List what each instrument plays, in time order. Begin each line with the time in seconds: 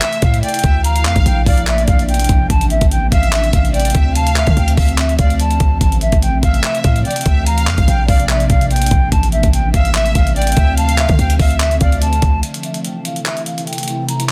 Already playing: ambient pad C3 E3 A3 E4, violin section E5
0.02 flute E5, clap, closed hi-hat
0.13 closed hi-hat
0.22 808-style bass A2, flute F5, kick, closed hi-hat
0.34 closed hi-hat
0.43 violin section D5, flute G5, closed hi-hat
0.49 closed hi-hat
0.54 closed hi-hat
0.59 closed hi-hat
0.64 808-style bass D2, violin section E5, kick, closed hi-hat
0.84 ambient pad F3 A#3 D4, violin section F5, flute A#5, closed hi-hat
0.96 closed hi-hat
1.05 808-style bass F2, flute F5, clap, closed hi-hat
1.16 808-style bass A#1, kick, closed hi-hat
1.26 808-style bass A#1, flute G5, closed hi-hat
1.46 808-style bass A#1, violin section D5, flute F5, kick, open hi-hat
1.58 closed hi-hat
1.67 flute E5, clap, closed hi-hat
1.78 closed hi-hat
1.88 808-style bass A#1, flute F5, kick, closed hi-hat
1.99 closed hi-hat
2.09 flute G5, closed hi-hat
2.14 closed hi-hat
2.19 closed hi-hat
2.24 closed hi-hat
2.29 808-style bass A#1, kick, closed hi-hat
2.50 808-style bass A1, ambient pad E3 A3 C4, flute A5, kick, closed hi-hat
2.61 closed hi-hat
2.70 flute E5, closed hi-hat
2.81 808-style bass A1, kick, closed hi-hat
2.91 flute G5, closed hi-hat
3.12 808-style bass A1, violin section E5, flute F5, kick, closed hi-hat
3.23 closed hi-hat
3.33 flute E5, clap, closed hi-hat
3.44 closed hi-hat
3.53 808-style bass A1, flute F5, kick, closed hi-hat
3.65 closed hi-hat
3.74 violin section D5, flute G5, closed hi-hat
3.80 closed hi-hat
3.85 closed hi-hat
3.90 closed hi-hat
3.95 808-style bass D2, violin section E5, kick, closed hi-hat
4.15 ambient pad D3 F3, violin section F5, flute A5, closed hi-hat
4.27 closed hi-hat
4.36 flute E5, clap, closed hi-hat
4.47 808-style bass D3, kick, closed hi-hat
4.57 808-style bass D2, flute G5, closed hi-hat
4.68 closed hi-hat
4.77 808-style bass D2, violin section E5, flute F5, kick, open hi-hat
4.89 closed hi-hat
4.98 flute E5, clap, closed hi-hat
5.09 closed hi-hat
5.19 808-style bass D2, violin section D5, flute F5, kick, closed hi-hat
5.30 closed hi-hat
5.40 flute A5, closed hi-hat
5.51 closed hi-hat
5.60 808-style bass D2, kick, closed hi-hat
5.81 808-style bass A1, ambient pad C3 E3, flute A5, kick, closed hi-hat
5.92 closed hi-hat
6.01 flute E5, closed hi-hat
6.12 808-style bass A1, kick, closed hi-hat
6.22 flute G5, closed hi-hat
6.33 808-style bass A#1
6.43 808-style bass A1, violin section E5, flute F5, kick, closed hi-hat
6.54 closed hi-hat
6.64 flute E5, clap, closed hi-hat
6.75 closed hi-hat
6.84 808-style bass A2, flute F5, kick, closed hi-hat
6.96 closed hi-hat
7.05 violin section D5, flute G5, closed hi-hat
7.11 closed hi-hat
7.16 closed hi-hat
7.21 closed hi-hat
7.26 808-style bass D2, violin section E5, kick, closed hi-hat
7.46 ambient pad F3 A#3 D4, violin section F5, flute A#5, closed hi-hat
7.58 closed hi-hat
7.67 808-style bass F2, flute F5, clap, closed hi-hat
7.78 808-style bass A#1, kick, closed hi-hat
7.88 808-style bass A#1, flute G5, closed hi-hat
8.08 808-style bass A#1, violin section D5, flute F5, kick, open hi-hat
8.20 closed hi-hat
8.29 flute E5, clap, closed hi-hat
8.40 closed hi-hat
8.50 808-style bass A#1, flute F5, kick, closed hi-hat
8.61 closed hi-hat
8.71 flute G5, closed hi-hat
8.76 closed hi-hat
8.82 closed hi-hat
8.86 closed hi-hat
8.91 808-style bass A#1, kick, closed hi-hat
9.12 808-style bass A1, ambient pad E3 A3 C4, flute A5, kick, closed hi-hat
9.23 closed hi-hat
9.32 flute E5, closed hi-hat
9.43 808-style bass A1, kick, closed hi-hat
9.53 flute G5, closed hi-hat
9.74 808-style bass A1, violin section E5, flute F5, kick, closed hi-hat
9.85 closed hi-hat
9.95 flute E5, clap, closed hi-hat
10.06 closed hi-hat
10.15 808-style bass A1, flute F5, kick, closed hi-hat
10.27 closed hi-hat
10.36 violin section D5, flute G5, closed hi-hat
10.42 closed hi-hat
10.47 closed hi-hat
10.52 closed hi-hat
10.57 808-style bass D2, violin section E5, kick, closed hi-hat
10.77 ambient pad D3 F3, violin section F5, flute A5, closed hi-hat
10.89 closed hi-hat
10.98 flute E5, clap, closed hi-hat
11.09 808-style bass D3, kick, closed hi-hat
11.19 808-style bass D2, flute G5, closed hi-hat
11.30 closed hi-hat
11.39 808-style bass D2, violin section E5, flute F5, kick, open hi-hat
11.51 closed hi-hat
11.60 flute E5, clap, closed hi-hat
11.71 closed hi-hat
11.81 808-style bass D2, violin section D5, flute F5, kick, closed hi-hat
11.92 closed hi-hat
12.02 flute A5, closed hi-hat
12.13 closed hi-hat
12.22 808-style bass D2, kick, closed hi-hat
12.43 ambient pad C3 E3 A3 E4, flute A5, closed hi-hat
12.54 closed hi-hat
12.63 flute E5, closed hi-hat
12.74 closed hi-hat
12.84 flute G5, closed hi-hat
13.05 flute F5, closed hi-hat
13.16 closed hi-hat
13.26 flute E5, clap, closed hi-hat
13.37 closed hi-hat
13.46 flute F5, closed hi-hat
13.58 closed hi-hat
13.67 flute G5, closed hi-hat
13.73 closed hi-hat
13.78 closed hi-hat
13.83 closed hi-hat
13.88 closed hi-hat
14.09 ambient pad F3 A#3 D4, flute A#5, closed hi-hat
14.20 closed hi-hat
14.29 closed hi-hat